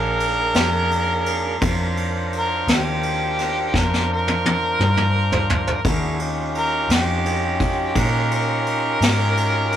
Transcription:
Already playing: fingered electric bass A#1, tonewheel organ A#3 D4 G#4 A#4, harmonica A#4
0.20 ride
0.54 fingered electric bass F2, snare, ride
0.91 ride
1.26 ride
1.61 fingered electric bass F2, tonewheel organ D4 F4 A#4 C5, kick, ride
1.97 ride
2.33 ride
2.38 harmonica A#4
2.67 fingered electric bass D#2, snare, ride
2.73 harmonica G4
3.03 ride
3.39 snare, ride
3.74 fingered electric bass F2, kick, snare
3.78 harmonica A#4
3.94 snare
4.13 harmonica A#4
4.28 high tom
4.46 high tom
4.79 fingered electric bass G2, mid tom
4.97 mid tom
5.32 floor tom
5.50 floor tom
5.67 floor tom
5.85 fingered electric bass D#2, tonewheel organ D4 E4 F#4 G#4, kick, ride
6.19 tonewheel organ C#4 D#4 F4 G4, ride
6.55 harmonica A#4, ride
6.89 fingered electric bass F2, snare, ride
6.95 harmonica G4
7.26 ride
7.60 kick, ride
7.95 fingered electric bass A#2, harmonica A#4, kick, ride
8.31 harmonica A#4, ride
8.66 ride
9.01 fingered electric bass G#2, snare, ride
9.37 ride
9.72 ride

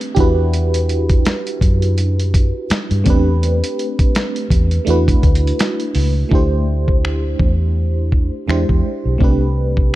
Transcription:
Already playing: fm electric piano A3 C4 D4 G4 B4
0.01 closed hi-hat
0.15 fingered electric bass E2, fm electric piano D4 E4 G4, kick, closed hi-hat
0.19 fm electric piano F#4 B4
0.54 closed hi-hat
0.74 closed hi-hat
0.89 closed hi-hat
1.09 kick, closed hi-hat
1.25 snare, closed hi-hat
1.47 closed hi-hat
1.61 fingered electric bass F#2, kick, closed hi-hat
1.82 closed hi-hat
1.98 closed hi-hat
2.19 closed hi-hat
2.34 kick, closed hi-hat
2.70 muted fingered electric bass stroke, snare, closed hi-hat
2.91 fingered electric bass G2, closed hi-hat
3.04 fingered electric bass E2, fm electric piano A3 C4 D4, kick, closed hi-hat
3.08 fm electric piano G4 B4
3.43 closed hi-hat
3.64 closed hi-hat
3.79 closed hi-hat
3.99 kick, closed hi-hat
4.15 snare, closed hi-hat
4.36 closed hi-hat
4.50 fingered electric bass E2, kick, closed hi-hat
4.71 closed hi-hat
4.85 fingered electric bass E2, fm electric piano A3 D4 E4, closed hi-hat
4.89 fm electric piano F#4 B4
5.08 kick, closed hi-hat
5.23 fingered electric bass D2, kick, closed hi-hat
5.35 closed hi-hat
5.47 closed hi-hat
5.59 snare, closed hi-hat
5.80 closed hi-hat
5.95 fingered electric bass C#2, open hi-hat
6.29 fingered electric bass D2, fm electric piano A3 D4 E4, kick
6.34 fm electric piano G4 C5
6.88 kick
7.05 finger snap
7.39 fingered electric bass E2, kick
8.12 kick
8.48 fingered electric bass E2, fm electric piano G#3 D4 E4 G4 C5, finger snap
8.69 fingered electric bass E2, kick
9.05 fingered electric bass B1
9.18 fingered electric bass C2, fm electric piano A3 C4 D4, kick
9.23 fm electric piano G4 B4
9.77 kick

